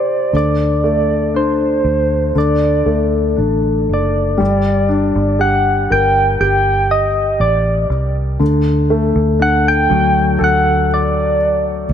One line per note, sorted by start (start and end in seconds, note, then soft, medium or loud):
0.00 0.29 C3 medium
0.00 0.30 G4 soft
0.00 0.35 C5 medium
0.00 0.35 D5 medium
0.33 1.81 D2 medium
0.33 2.32 D3 medium
0.33 1.38 D5 medium
0.84 2.32 A3 soft
1.34 2.33 D4 medium
1.34 2.40 C5 medium
1.84 2.32 D2 medium
2.35 2.83 D2 medium
2.35 4.36 D3 medium
2.35 3.40 D5 medium
2.86 3.34 D2 medium
2.86 4.36 A3 soft
3.36 3.86 A1 medium
3.36 4.36 D4 soft
3.89 4.36 F#1 medium
3.94 5.39 D5 medium
4.38 5.11 G1 loud
4.38 8.35 G3 medium
4.88 6.86 D4 medium
5.15 5.87 G1 medium
5.39 6.39 G4 medium
5.39 5.94 F#5 loud
5.90 6.38 G1 medium
5.90 7.86 A#4 medium
5.90 6.40 G5 loud
6.40 7.36 G1 medium
6.40 8.36 G4 medium
6.40 6.93 G5 loud
6.91 7.42 D#5 loud
7.40 7.87 A1 medium
7.40 8.16 D5 medium
7.90 8.37 C2 medium
8.39 9.11 D2 loud
8.39 11.93 D3 medium
8.90 10.86 A3 medium
9.15 9.86 D2 medium
9.39 11.35 D4 medium
9.39 9.70 F#5 loud
9.68 10.45 G5 loud
9.90 10.37 D2 loud
9.90 11.85 F#3 medium
10.39 11.85 D2 loud
10.39 11.93 A4 medium
10.44 10.95 F#5 loud
10.94 11.91 D5 medium
11.89 11.93 D2 medium